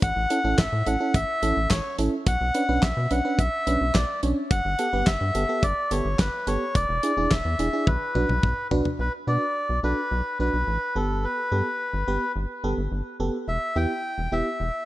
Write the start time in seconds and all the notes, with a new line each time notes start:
0.02 A1 F#5, kick, closed hi-hat
0.16 A1
0.30 C#4 E4 A4, closed hi-hat
0.44 A1 C#4 E4 A4
0.58 A1 E5, kick, snare, clap, closed hi-hat
0.73 A2
0.86 A1 C#4 E4 A4 F#5, closed hi-hat
1.00 C#4 E4 A4
1.14 A1 E5, kick, closed hi-hat
1.43 A1 C#4 E4 A4, closed hi-hat
1.57 A1
1.70 A1 C#5, kick, snare, clap, closed hi-hat
1.99 A1 C#4 E4 A4, closed hi-hat
2.26 B1 F#5, kick, closed hi-hat
2.41 B1
2.54 C#4 D4 B4, closed hi-hat
2.69 B1 C#4 D4 B4
2.82 B1 E5, kick, snare, clap, closed hi-hat
2.97 B2
3.11 B1 C#4 D4 B4 F#5, closed hi-hat
3.25 C#4 D4 B4
3.39 B1 E5, kick, closed hi-hat
3.67 B1 C#4 D4 B4, closed hi-hat
3.81 B1
3.95 B1 D5, kick, snare, clap, closed hi-hat
4.23 B1 C#4 D4 C#5, closed hi-hat
4.51 G1 F#5, kick, closed hi-hat
4.65 G1
4.79 B3 G4 A4, closed hi-hat
4.93 G1 B3 G4 B4
5.07 G1 E5, kick, snare, clap, closed hi-hat
5.21 G2
5.35 G1 B3 G4 A4, closed hi-hat
5.49 B3 G4 A4
5.63 G1 D5, kick, closed hi-hat
5.91 G1 B3 G4 A4 C#5, closed hi-hat
6.05 G1
6.19 G1 B4, kick, snare, clap, closed hi-hat
6.47 G1 B3 G4 A4 C#5, closed hi-hat
6.75 E1 D5, kick, closed hi-hat
6.89 E1
7.03 D4 E4 G#4, closed hi-hat
7.17 E1 D4 E4 G#4
7.31 E1 E5, kick, snare, clap, closed hi-hat
7.45 E2
7.59 E1 D4 E4 G#4, closed hi-hat
7.73 D4 E4 G#4
7.87 B1 B4, kick, high tom
8.15 B1 D4 F#4 B4, mid tom
8.29 B1, mid tom
8.43 B1, kick, mid tom
8.71 B1 D4 F#4 B4, floor tom
8.85 floor tom
8.99 B1 B4
9.27 B2 D4 F#4 B4 D5
9.69 B1
9.83 B1 D4 F#4 A4 B4
10.11 B1
10.40 B1 D4 F#4 B4
10.54 B1
10.68 A1
10.96 G1 B3 G4 A4
11.24 B4
11.52 G2 B3 G4 A4
11.94 G1
12.08 G1 B3 G4 B4
12.36 G1
12.64 G1 B3 G4 A4
12.78 G1
12.92 G1
13.20 F#1 B3 G4 A4
13.48 E1 E5
13.76 E2 B3 E4 G4 G5
14.18 E1
14.32 E1 B3 E4 G4 E5
14.60 E1